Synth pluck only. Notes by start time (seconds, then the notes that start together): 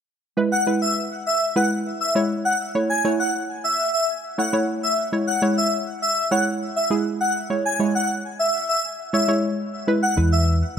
0.37 G#3 E4 B4
0.67 G#3 E4 B4
1.56 G#3 E4 B4
2.15 G#3 E4 C#5
2.75 A3 E4 C#5
3.04 A3 E4 C#5
4.38 A3 E4 C#5
4.53 A3 E4 C#5
5.12 G#3 E4 C#5
5.42 G#3 E4 C#5
6.31 G#3 E4 C#5
6.90 G#3 E4 G#4
7.50 G#3 E4 C#5
7.79 G#3 E4 C#5
9.13 G#3 E4 C#5
9.28 G#3 E4 C#5
9.87 G#3 E4 B4
10.17 G#3 E4 B4